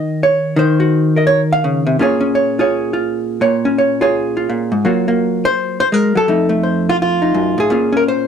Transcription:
hollow-body jazz guitar
Already playing: D#3 D#4 F#4 D#5
0.23 C#5
0.56 D#3 C5
0.80 F#4
1.16 A#4 D#5
1.27 C#5
1.53 F5
1.64 C#3
1.87 C3
1.99 A#2 C#4 F4 G#4 C#5
2.20 C#4
2.35 C#5
2.59 F4 G#4 C#5
2.93 F4
3.41 A#2 C#5
3.65 C#4
3.78 C#5
4.01 F4 G#4 C#5
4.37 F4
4.49 A#2
4.72 G#2
4.85 F#3 A#3 F4 F#4
5.08 A#3
5.45 C5
5.80 C5
5.92 G#3 A#4
6.15 F#3 A4
6.28 F2 A3 D#4
6.49 A3
6.63 C5
6.89 F4
7.02 F4
7.22 D#4
7.34 F#2
7.58 A2 G#4
7.70 A#2 C#4 F4
7.92 C#4
7.97 A#4
8.08 C5

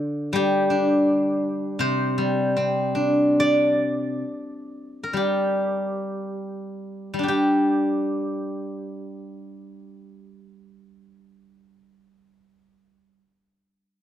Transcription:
guzheng
Already playing: D3 C5
0.33 G3 G4
0.70 D4
1.79 C3 C5
2.18 G3
2.57 C4
2.95 D4
3.40 D5
5.03 A#4
5.13 G3 G4
7.14 G3
7.19 D4
7.23 G4
7.28 G4

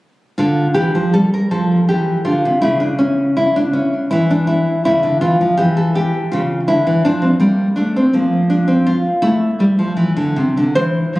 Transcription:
nylon-string guitar
0.38 D3 F4
0.74 E3 G4
0.95 F3
1.14 G3 A4
1.34 A#4
1.51 F3 A4
1.89 E3 G4
2.25 D3 F4
2.45 C3
2.62 C#3 E4
2.80 D4
2.99 C#4
3.37 E4
3.56 D4
3.73 C#4
4.11 E3 E4
4.31 D4
4.47 E4
4.85 C#3 E4
5.03 D3
5.21 E3 F4
5.41 F3
5.57 E3 G4
5.77 A4
5.95 G4
6.32 C#3 F4
6.68 D3 E4
6.87 E3
7.05 F3 D4
7.22 C4
7.40 G3 A#3
7.76 A3 D4
7.96 C4
8.13 F3 A#3
8.50 D4
8.68 C4
8.87 F4
9.22 A3 E4
9.60 G3
9.79 F3
9.97 E3
10.17 D3
10.36 C3
10.57 D3
10.75 E3 C5
11.16 F3

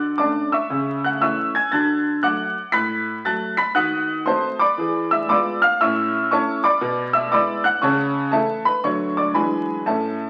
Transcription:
upright piano
Already playing: D3 F#4 F#5 D6 F#6
0.18 D3 A3 C#4 D5 A5 D6
0.52 E5 C#6 E6
0.70 C#3
1.04 F#5 F#6
1.21 E3 A3 C#4 E5 C#6 E6
1.55 G#5 G#6
1.71 D3 F#4 A5 F#6 A6
2.23 F#3 A3 F#4 F#5 D6 F#6
2.72 A2 B5 F#6 B6
3.25 F#3 A3 F#4 A5 F#6 A6
3.57 B5 B6
3.75 D#3 F#4 F#5 D#6 F#6
4.26 A3 C4 F#4 C5 A5 C6
4.59 D5 B5 D6
4.78 E3 G#4
5.11 E5 E6
5.29 G#3 B3 F4 D5 B5 D6
5.62 F5 F6
5.81 A2 C#4 E5 C#6 E6
6.31 A3 C#4 E4 C#5 A5 C#6
6.64 D5 B5 D6
6.81 B2
7.13 E5 E6
7.32 G#3 B3 E4 D5 B5 D6
7.64 F#5 F#6
7.82 C#3 C#5 A5 C#6
8.31 E3 A3 E4 A4 E5 A5
8.65 B4 B5
8.84 D3 F#3 A3 D4 F#4 C#5 C#6
9.17 D5 D6
9.34 E3 F#3 G#3 D4 G#4 B4 G#5 B5
9.86 A2 C#4 A4 E5 A5

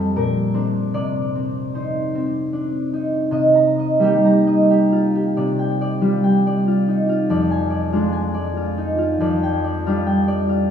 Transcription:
harp
Already playing: F2 G3 C4 G4 A4 C5
0.16 A#2 A#4
0.54 C4 D4
0.94 C3 D5
1.35 C4
1.75 D#4 C5
2.15 C4
2.53 D4
2.93 D#4
3.31 C3 D#5
3.55 A#5
3.79 D#5
4.00 G3 A#3 D#4
4.04 G4
4.25 A#5
4.47 D#5
4.70 G4
4.92 F4
5.15 G4
5.37 C3 D5
5.59 G5
5.81 D5
6.01 G3 D4 F4
6.24 G5
6.47 D5
6.67 F4
6.88 D#4
7.09 F4
7.30 F2 D5
7.51 G#5
7.70 D5
7.92 G#3 D4 F4
8.12 G#5
8.34 D5
8.57 F4
8.78 D#4
8.98 F4
9.20 F2 D5
9.43 G5
9.64 D5
9.87 G3 D4 F4
10.07 G5
10.28 D5
10.49 F4

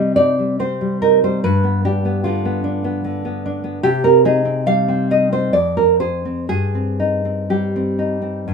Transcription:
nylon-string guitar
Already playing: C3 G3 C4 D#4 D#5
0.16 D#4 D5
0.39 G3
0.59 C4 C5
0.81 G3
1.02 D#4 A#4
1.24 G3 C5
1.44 G2 B4
1.64 B3
1.85 D4 G4
2.05 B3
2.24 D3 F4
2.45 B3
2.64 D4
2.84 B3
3.04 D3
3.25 B3
3.46 D4
3.64 B3
3.83 C3 G4
4.04 C4 A#4
4.25 D#4 G#4
4.45 C4
4.66 G3 F5
4.88 C4
5.11 D#4 D#5
5.32 C4 C5
5.53 F2 D5
5.77 C4 A#4
6.00 G#4 C5
6.25 C4
6.49 G2 G#4
6.75 C4
7.00 D#4
7.25 C4
7.50 G3 G4
7.76 C4
7.99 D#4
8.22 C4
8.48 G2

